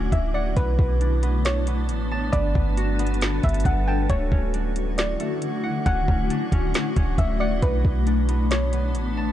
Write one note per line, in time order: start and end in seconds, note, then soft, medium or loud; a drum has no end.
0.00 0.12 D1 loud
0.00 0.53 D3 medium
0.00 0.53 A3 medium
0.00 1.47 A3 medium
0.00 1.07 C#4 medium
0.00 0.53 D4 medium
0.00 1.00 D4 medium
0.00 0.53 E4 medium
0.00 0.53 F#4 loud
0.00 0.18 F#5 medium
0.00 0.53 F#5 medium
0.00 0.55 D6 medium
0.12 0.55 D1 loud
0.12 0.33 E5 medium
0.12 kick medium
0.12 closed hi-hat medium
0.34 0.55 D5 medium
0.34 1.95 F#5 medium
0.56 0.78 B1 loud
0.56 2.31 A3 medium
0.56 2.31 B3 medium
0.56 0.78 B3 medium
0.56 4.06 D4 medium
0.56 2.31 D4 medium
0.56 4.06 B4 medium
0.56 1.41 B4 loud
0.56 2.31 A5 medium
0.56 kick medium
0.56 closed hi-hat medium
0.78 1.90 B1 loud
0.78 1.22 B3 medium
0.78 kick medium
1.01 3.81 D4 medium
1.01 closed hi-hat medium
1.23 1.66 B3 medium
1.23 closed hi-hat medium
1.45 2.29 C#5 medium
1.45 snare loud
1.45 closed hi-hat medium
1.67 2.32 B3 medium
1.67 closed hi-hat medium
1.89 2.31 A1 loud
1.89 closed hi-hat medium
2.11 3.56 A5 medium
2.32 2.54 G1 loud
2.32 4.08 G3 medium
2.32 2.54 B3 medium
2.32 4.08 F#4 medium
2.32 7.58 F#4 medium
2.32 4.08 A4 medium
2.32 4.08 B4 medium
2.32 3.39 D5 loud
2.32 4.08 A5 medium
2.32 kick medium
2.32 closed hi-hat medium
2.55 3.40 G1 loud
2.55 2.99 B3 medium
2.55 kick medium
2.77 5.21 F#4 medium
2.77 closed hi-hat medium
2.99 3.43 B3 medium
2.99 closed hi-hat medium
3.07 closed hi-hat medium
3.14 closed hi-hat soft
3.21 snare loud
3.21 closed hi-hat medium
3.43 3.65 G1 loud
3.43 6.54 B3 medium
3.43 3.65 E5 medium
3.43 kick medium
3.43 closed hi-hat soft
3.49 closed hi-hat medium
3.54 closed hi-hat medium
3.60 closed hi-hat medium
3.65 4.08 G1 loud
3.65 3.86 F#5 medium
3.65 kick medium
3.65 closed hi-hat medium
3.88 4.08 G5 medium
3.88 5.33 A5 medium
4.09 4.31 D1 loud
4.09 7.59 D3 medium
4.09 5.19 A3 medium
4.09 9.32 A3 medium
4.09 9.32 D4 medium
4.09 7.59 E4 medium
4.09 4.94 C#5 loud
4.09 7.59 F#5 medium
4.09 7.59 C#6 medium
4.09 kick medium
4.09 closed hi-hat medium
4.32 5.16 D1 loud
4.32 5.85 C#4 medium
4.32 kick loud
4.54 5.92 D4 medium
4.54 closed hi-hat medium
4.76 closed hi-hat medium
4.98 5.82 D5 medium
4.98 snare loud
4.98 closed hi-hat medium
5.20 8.53 A3 medium
5.20 closed hi-hat medium
5.42 closed hi-hat medium
5.63 7.24 F#5 medium
5.86 6.07 D1 loud
5.86 6.08 C#4 medium
5.86 7.14 F#5 loud
5.86 kick medium
5.86 closed hi-hat medium
6.08 6.29 D1 loud
6.08 6.52 C#4 medium
6.08 kick medium
6.30 8.06 D4 medium
6.30 closed hi-hat medium
6.52 6.73 D1 loud
6.52 6.96 C#4 medium
6.52 kick loud
6.52 closed hi-hat medium
6.74 snare loud
6.74 closed hi-hat medium
6.96 7.18 D1 loud
6.96 8.13 C#4 medium
6.96 kick loud
6.96 closed hi-hat medium
7.18 7.61 D1 loud
7.18 7.39 E5 medium
7.18 kick medium
7.18 closed hi-hat medium
7.40 7.61 D5 medium
7.40 9.01 F#5 medium
7.62 7.84 B1 loud
7.62 9.32 B3 medium
7.62 7.84 B3 medium
7.62 9.32 D4 loud
7.62 9.32 B4 medium
7.62 8.47 B4 loud
7.62 9.32 A5 medium
7.62 kick medium
7.62 closed hi-hat medium
7.84 8.96 B1 loud
7.84 8.28 B3 medium
7.84 kick medium
8.07 9.32 D4 medium
8.07 closed hi-hat medium
8.29 8.72 B3 medium
8.29 closed hi-hat medium
8.51 9.32 C#5 medium
8.51 snare loud
8.51 closed hi-hat medium
8.73 9.32 B3 medium
8.73 closed hi-hat medium
8.95 9.32 A1 loud
8.95 closed hi-hat medium
9.17 9.32 A5 medium